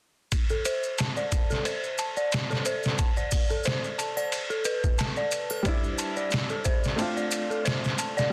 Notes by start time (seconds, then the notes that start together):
0.32 kick, ride, maracas
0.49 A4, maracas
0.65 C5, ride, maracas
0.83 maracas
0.98 A5, snare, ride, maracas
1.16 D5, maracas
1.32 kick, ride, maracas
1.50 A4, snare, maracas
1.65 C5, ride, maracas
1.84 maracas
1.98 A5, ride, maracas
2.17 D5, maracas
2.32 snare, ride, maracas
2.50 A4, snare, maracas
2.65 C5, ride, maracas
2.83 snare, maracas
2.98 A5, kick, ride, maracas
3.17 D5, maracas
3.31 kick, open hi-hat, maracas
3.50 A4, maracas
3.63 C5, snare, ride, maracas
3.84 maracas
3.98 A5, ride, maracas
4.17 D5, triangle, maracas
4.32 ride, maracas
4.50 A4, maracas
4.65 B4, ride, maracas
4.84 kick, maracas
4.98 A5, snare, ride, maracas
5.16 D5, maracas
5.31 ride, maracas
5.50 A4, triangle, maracas
5.62 G3 D4 C5, kick, ride, maracas
5.68 E4
5.84 maracas
5.98 A5, ride, maracas
6.16 D5, maracas
6.31 snare, ride, maracas
6.49 A4, maracas
6.65 C5, kick, ride, maracas
6.84 snare, maracas
6.96 A3 C4 D4 A5, ride, maracas
7.01 F4
7.17 D5, maracas
7.31 ride, maracas
7.50 A4, maracas
7.65 C5, snare, ride, maracas
7.84 snare, maracas
7.98 A5, ride, maracas
8.17 D5, snare, maracas